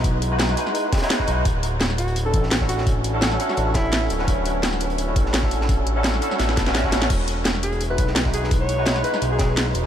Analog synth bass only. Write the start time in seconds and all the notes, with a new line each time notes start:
Already playing: B1
1.28 B1
1.45 D1
2.34 A1
3.57 A1
4.10 D1
4.28 D1
5.16 A1
6.40 A1
7.10 E1
7.98 B1
9.22 B1
9.75 E1